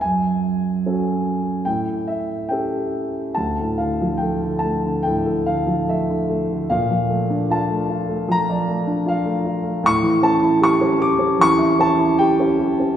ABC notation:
X:1
M:4/4
L:1/16
Q:1/4=74
K:A
V:1 name="Grand piano"
g8 =g2 e2 g3 z | [K:Dm] a2 f2 g2 a2 g2 f2 e3 z | f4 a4 b4 f3 z | ^c'2 a2 c'2 d'2 c'2 a2 g3 z |]
V:2 name="Grand piano"
F,,4 [CFA]4 A,,4 [C=GA]4 | [K:Dm] D,, A,, D, F, A, D, A, D, A,, A D, F, A, D, A, D, | B,, F, A, D F A, F A, F, d A, D F A, F A, | A,, E, ^C E G C G C E, e C E G C G C |]